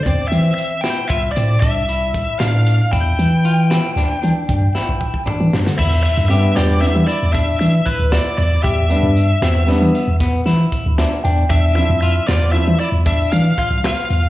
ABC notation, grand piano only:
X:1
M:11/8
L:1/8
Q:1/4=115
K:Ephr
V:1 name="Grand piano"
z8 z3 | z8 z3 | z2 [G,B,D]2 [G,B,E] z6 | z [G,B,D] z2 [G,B,D] z4 e g |
z [F,CE] z2 [F,CE] z6 |]